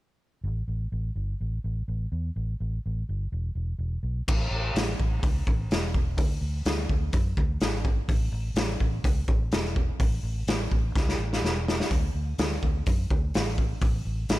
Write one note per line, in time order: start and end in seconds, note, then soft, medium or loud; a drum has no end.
0.44 0.61 A1 medium
0.68 0.85 A1 medium
0.92 1.09 A1 medium
1.16 1.33 G1 medium
1.41 1.58 A1 medium
1.64 1.81 A1 medium
1.88 2.05 A1 medium
2.12 2.29 E2 medium
2.36 2.53 A1 medium
2.60 2.77 A1 medium
2.86 3.02 A1 medium
3.09 3.26 G1 medium
3.32 3.49 E1 medium
3.55 3.73 E1 medium
3.79 3.96 E1 medium
4.03 4.20 B1 medium
4.28 4.47 A1 medium
4.28 kick medium
4.28 crash medium
4.51 4.70 A1 medium
4.74 4.94 A1 medium
4.74 snare loud
4.74 open hi-hat soft
4.99 5.18 A1 medium
4.99 kick medium
5.23 5.42 C#2 medium
5.23 kick loud
5.23 open hi-hat soft
5.47 5.66 A1 medium
5.47 kick medium
5.70 6.17 E1 medium
5.70 snare medium
5.70 open hi-hat soft
5.94 kick medium
6.17 6.37 D2 medium
6.17 kick loud
6.17 open hi-hat soft
6.41 6.61 D2 medium
6.65 6.85 D2 medium
6.65 snare medium
6.65 open hi-hat soft
6.89 7.09 D2 medium
6.89 kick medium
7.13 7.32 F#2 medium
7.13 kick loud
7.13 open hi-hat soft
7.37 7.56 D2 medium
7.37 kick medium
7.60 7.99 G#1 medium
7.60 snare medium
7.60 open hi-hat soft
7.85 kick medium
8.08 8.28 A1 medium
8.08 kick loud
8.08 open hi-hat soft
8.32 8.51 A1 medium
8.54 8.74 A1 medium
8.54 snare loud
8.54 open hi-hat soft
8.80 9.00 A1 medium
8.80 kick medium
9.04 9.23 C#2 medium
9.04 kick loud
9.04 open hi-hat soft
9.28 9.47 A1 medium
9.28 kick medium
9.51 9.90 E1 medium
9.51 snare medium
9.51 open hi-hat soft
9.65 snare soft
9.76 kick medium
10.00 10.19 A1 medium
10.00 kick medium
10.00 open hi-hat soft
10.23 10.42 A1 medium
10.47 10.66 A1 medium
10.47 snare loud
10.47 open hi-hat soft
10.71 10.90 A1 medium
10.71 kick medium
10.96 11.15 C#2 medium
10.96 kick loud
10.96 snare soft
11.09 snare soft
11.18 11.38 A1 medium
11.33 snare medium
11.42 11.80 E1 medium
11.42 snare medium
11.68 snare medium
11.80 snare medium
11.91 12.10 D2 medium
11.91 kick loud
11.91 open hi-hat soft
12.14 12.33 D2 medium
12.38 12.57 D2 medium
12.38 snare medium
12.38 open hi-hat soft
12.62 12.81 D2 medium
12.62 kick medium
12.86 13.05 F#2 medium
12.86 kick medium
12.86 open hi-hat soft
13.11 13.29 D2 medium
13.11 kick medium
13.34 13.72 A1 medium
13.34 snare medium
13.34 open hi-hat soft
13.58 kick medium
13.81 14.00 A1 medium
13.81 kick loud
13.81 open hi-hat soft
14.05 14.24 A1 medium
14.29 14.39 A1 medium
14.29 snare loud
14.29 open hi-hat soft